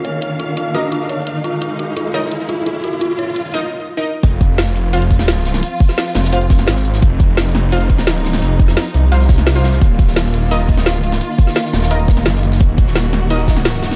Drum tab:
HH |x-x-x-x-x-x-x-x-|x-x-x-x-x-x-x-x-|x-x-x-x---------|x-x-x-x-xxxxx-xx|
SD |----------------|----------------|----------------|----oo-----ooooo|
BD |----------------|----------------|----------------|o-o-------o-----|

HH |x-x-x-xxxxxxx-xx|x-x-x-x-xxxxx-xx|x-x-x-x-xxxxx-xx|x-x-x-x-xxxxx-xx|
SD |---ooooo--oooo-o|----ooo----ooooo|---ooo---ooooooo|---ooo-----ooo-o|
BD |--o-------o-----|o-o-------o-----|--o-------o-----|o-o-------o-----|

HH |x-x-x-xxxxxxx-xx|x-x-x-x-xxxxx-xx|
SD |---ooooo--oooo-o|---oooo---oooooo|
BD |--o-------o-----|o-o-------o-----|